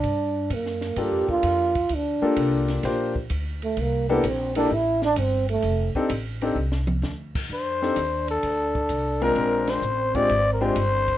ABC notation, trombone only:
X:1
M:4/4
L:1/8
Q:"Swing" 1/4=129
K:Fmix
V:1 name="Trombone"
D2 B,2 G F3 | D3 z4 A, | B, =B, C D =E D C A,- | A, z6 z |
D8 | C8 |]